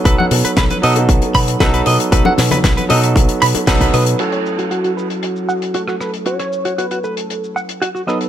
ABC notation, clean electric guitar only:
X:1
M:4/4
L:1/16
Q:1/4=116
K:F#dor
V:1 name="Clean electric guitar"
B f z B B B d z3 b z B B d z | B f z B B B d z3 b z B B d z | F c z F F F B z3 f z F F B z | F c z F F F B z3 f z F F d z |]